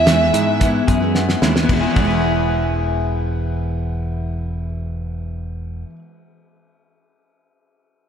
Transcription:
Already playing: picked electric bass E2, clean electric guitar E3 B3 E4, violin E5
0.06 steel-string acoustic guitar E3 G#3 B3 E4, clean electric guitar G#4, snare, closed hi-hat
0.33 picked electric bass G#2, steel-string acoustic guitar E3 G#3 B3 E4, clean electric guitar E4, closed hi-hat
0.60 steel-string acoustic guitar E3 G#3 B3 E4, clean electric guitar B3, kick, closed hi-hat
0.87 picked electric bass F#2, clean electric guitar G#4, kick, closed hi-hat
1.00 steel-string acoustic guitar G#3 B3 E4
1.15 clean electric guitar B3, snare
1.29 snare
1.42 picked electric bass D#2, steel-string acoustic guitar E3 G#3 B3 E4, clean electric guitar E4, snare
1.56 snare
1.62 steel-string acoustic guitar E3, clean electric guitar B3
1.69 picked electric bass E1, steel-string acoustic guitar G#3, kick, ride
1.73 steel-string acoustic guitar B3, clean electric guitar E4
1.80 steel-string acoustic guitar E4, clean electric guitar G#4
1.90 steel-string acoustic guitar E3, clean electric guitar B3
1.96 picked electric bass E1, steel-string acoustic guitar G#3, kick, ride
2.00 clean electric guitar E4
2.05 steel-string acoustic guitar B3, clean electric guitar G#4
2.10 steel-string acoustic guitar E4

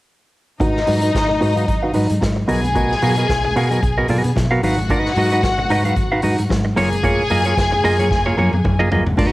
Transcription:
0.60 fingered electric bass G#1, clean electric guitar D#4 F#4 B4 D#5, string section D#4 D#5, kick, closed hi-hat, muted conga, low conga
0.77 snare
0.87 fingered electric bass G#2, clean electric guitar D#4 F#4 B4 D#5, open hi-hat, muted conga, high conga
1.01 clean electric guitar D#4 F#4 B4 D#5, closed hi-hat
1.14 fingered electric bass G#1, muted clean electric guitar stroke, kick, snare, closed hi-hat
1.28 muted clean electric guitar stroke, low conga
1.41 fingered electric bass G#2, clean electric guitar D#4 F#4 B4 D#5, open hi-hat, muted conga
1.56 clean electric guitar D#4 F#4 B4 F5, closed hi-hat, high conga
1.68 fingered electric bass G#1, kick, closed hi-hat, muted conga
1.82 clean electric guitar D#4 F#4 B4 F5
1.94 fingered electric bass G#2, clean electric guitar D#4 F#4 B4 D#5, open hi-hat, muted conga, high conga
2.09 fingered electric bass G#2, muted clean electric guitar stroke, closed hi-hat, high conga
2.21 fingered electric bass G#2, muted clean electric guitar stroke, kick, snare, closed hi-hat, high conga
2.36 muted clean electric guitar stroke
2.48 fingered electric bass B1, clean electric guitar B3 F#4 A#4 D#5, string section G#4 G#5, open hi-hat, muted conga, high conga
2.63 muted clean electric guitar stroke, closed hi-hat, low conga
2.75 clean electric guitar B3 F#4 A#4 D#5, kick, closed hi-hat, muted conga, low conga
2.91 snare
3.02 fingered electric bass B2, clean electric guitar B3 F#4 A#4 F5, open hi-hat, muted conga, high conga
3.16 clean electric guitar B3 F#4 A#4 D#5, closed hi-hat
3.29 fingered electric bass B1, kick, snare, closed hi-hat, muted conga
3.44 muted clean electric guitar stroke, low conga
3.56 fingered electric bass B2, clean electric guitar B3 F#4 A#4 F5, open hi-hat, muted conga
3.71 clean electric guitar B3 F#4 A#4 D#5, closed hi-hat, high conga
3.82 fingered electric bass B1, muted clean electric guitar stroke, kick, closed hi-hat, muted conga
3.98 clean electric guitar B3 F#4 A#4 D#5
4.08 fingered electric bass B2, clean electric guitar B3 F#4 A#4 D#5, open hi-hat, muted conga, high conga
4.24 fingered electric bass B2, muted clean electric guitar stroke, closed hi-hat, high conga
4.36 fingered electric bass B2, muted clean electric guitar stroke, kick, snare, closed hi-hat, muted conga, high conga
4.51 clean electric guitar B3 F#4 A#4 F5
4.63 fingered electric bass G#1, clean electric guitar D#4 F#4 B4 F5, string section F#4 F#5, open hi-hat, muted conga, high conga
4.77 closed hi-hat, low conga
4.89 clean electric guitar D#4 F#4 B4 D#5, kick, closed hi-hat, muted conga, low conga
5.05 snare
5.16 fingered electric bass G#2, clean electric guitar D#4 F#4 B4 D#5, open hi-hat, muted conga, high conga
5.30 clean electric guitar D#4 F#4 B4 D#5, closed hi-hat
5.43 fingered electric bass G#1, kick, snare, closed hi-hat
5.58 muted clean electric guitar stroke, low conga
5.70 fingered electric bass G#2, clean electric guitar D#4 F#4 B4 D#5, open hi-hat
5.85 clean electric guitar D#4 F#4 B4 F5, closed hi-hat, high conga
5.97 fingered electric bass G#1, kick, closed hi-hat, muted conga
6.12 clean electric guitar D#4 F#4 B4 F5
6.22 fingered electric bass G#2, clean electric guitar D#4 F#4 B4 D#5, open hi-hat, muted conga, high conga
6.38 fingered electric bass G#2, muted clean electric guitar stroke, closed hi-hat, high conga
6.49 fingered electric bass G#2, muted clean electric guitar stroke, kick, snare, closed hi-hat, muted conga, high conga
6.65 muted clean electric guitar stroke
6.76 fingered electric bass F#1, clean electric guitar A#3 F4 G#4 C#5, string section G#4 G#5, open hi-hat, muted conga, high conga
6.92 muted clean electric guitar stroke, closed hi-hat, low conga
7.03 clean electric guitar A#3 F4 G#4 C#5, kick, closed hi-hat, low conga
7.30 fingered electric bass F#2, clean electric guitar A#3 F4 G#4 D#5, open hi-hat, high conga
7.44 clean electric guitar A#3 F4 G#4 C#5, closed hi-hat
7.57 fingered electric bass F#1, muted clean electric guitar stroke, kick, snare, closed hi-hat, muted conga
7.72 muted clean electric guitar stroke, low conga
7.84 fingered electric bass F#2, clean electric guitar A#3 F4 G#4 D#5, open hi-hat
7.99 clean electric guitar A#3 F4 G#4 C#5, closed hi-hat, high conga
8.11 fingered electric bass F#1, muted clean electric guitar stroke, kick, snare, muted conga
8.26 clean electric guitar A#3 F4 G#4 C#5
8.37 fingered electric bass F#2, clean electric guitar A#3 F4 G#4 C#5, high tom, muted conga, high conga
8.53 fingered electric bass F#2, muted clean electric guitar stroke, high tom, high conga
8.64 fingered electric bass F#2, muted clean electric guitar stroke, kick, mid tom, high conga
8.79 clean electric guitar A#3 F4 G#4 D#5
8.91 fingered electric bass G1, clean electric guitar A#3 F4 G#4 D#5, floor tom, muted conga, high conga
9.06 muted clean electric guitar stroke, floor tom, low conga
9.17 fingered electric bass G#1, clean electric guitar D#4 F#4 B4 D#5, kick, crash, muted conga, low conga

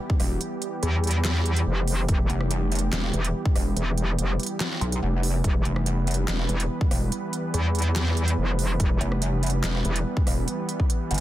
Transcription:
Already playing: supersaw synth E3 G3 B3 G4
0.10 kick
0.20 wobble bass E1, cross-stick, open hi-hat
0.41 closed hi-hat
0.62 closed hi-hat
0.83 wobble bass E2, closed hi-hat
1.04 closed hi-hat
1.07 closed hi-hat
1.11 closed hi-hat
1.25 snare, clap, closed hi-hat
1.46 closed hi-hat
1.56 closed hi-hat
1.67 wobble bass F1
1.88 open hi-hat
2.09 wobble bass E1, kick, closed hi-hat
2.30 wobble bass F1, closed hi-hat
2.41 cross-stick
2.51 closed hi-hat
2.72 closed hi-hat
2.75 closed hi-hat
2.79 closed hi-hat
2.93 wobble bass E1, snare, clap, closed hi-hat
3.14 wobble bass E1, closed hi-hat
3.25 closed hi-hat
3.45 kick
3.56 wobble bass E1, cross-stick, open hi-hat
3.76 wobble bass E1, closed hi-hat
3.98 closed hi-hat
4.18 wobble bass F1, closed hi-hat
4.40 closed hi-hat
4.43 closed hi-hat
4.46 closed hi-hat
4.60 snare, clap, closed hi-hat
4.81 wobble bass B1, closed hi-hat
4.92 closed hi-hat
5.02 wobble bass F1
5.23 open hi-hat
5.44 wobble bass E1, supersaw synth B4, kick, closed hi-hat
5.65 wobble bass F1, closed hi-hat
5.76 cross-stick
5.86 closed hi-hat
6.07 closed hi-hat
6.11 closed hi-hat
6.14 closed hi-hat
6.28 wobble bass E1, snare, clap, closed hi-hat
6.49 wobble bass E1, closed hi-hat
6.60 closed hi-hat
6.81 kick
6.91 wobble bass E1, cross-stick, open hi-hat
7.12 closed hi-hat
7.33 closed hi-hat
7.54 wobble bass E2, closed hi-hat
7.75 closed hi-hat
7.79 closed hi-hat
7.82 closed hi-hat
7.96 snare, clap, closed hi-hat
8.17 closed hi-hat
8.28 closed hi-hat
8.38 wobble bass F1
8.59 open hi-hat
8.80 wobble bass E1, kick, closed hi-hat
9.01 wobble bass F1, closed hi-hat
9.12 cross-stick
9.22 closed hi-hat
9.43 closed hi-hat
9.46 closed hi-hat
9.50 closed hi-hat
9.64 wobble bass E1, snare, clap, closed hi-hat
9.85 wobble bass E1, closed hi-hat
9.96 closed hi-hat
10.17 kick
10.27 wobble bass E1, cross-stick, open hi-hat
10.48 closed hi-hat
10.69 closed hi-hat
10.80 kick
10.90 closed hi-hat
11.11 wobble bass G1, closed hi-hat
11.14 closed hi-hat

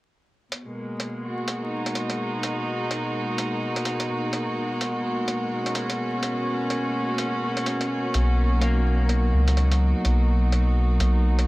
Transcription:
0.52 string section B2, closed hi-hat
0.66 string section G#3 A#3
1.00 closed hi-hat
1.26 string section F#4
1.48 closed hi-hat
1.62 string section D#4
1.86 closed hi-hat
1.95 closed hi-hat
2.10 closed hi-hat
2.43 closed hi-hat
2.91 closed hi-hat
3.38 closed hi-hat
3.76 closed hi-hat
3.85 closed hi-hat
4.00 closed hi-hat
4.33 closed hi-hat
4.81 closed hi-hat
5.28 closed hi-hat
5.59 string section C#4
5.66 closed hi-hat
5.75 closed hi-hat
5.90 closed hi-hat
6.23 closed hi-hat
6.70 closed hi-hat
7.18 closed hi-hat
7.57 closed hi-hat
7.66 closed hi-hat
7.81 closed hi-hat
8.14 sub bass B1, closed hi-hat
8.49 string section F#3 D#4
8.61 clean electric guitar A#3, closed hi-hat
9.09 closed hi-hat
9.33 sub bass C#2
9.48 closed hi-hat
9.57 closed hi-hat
9.72 closed hi-hat
10.05 sub bass B1, closed hi-hat
10.52 closed hi-hat
11.00 sub bass B1, closed hi-hat
11.39 closed hi-hat

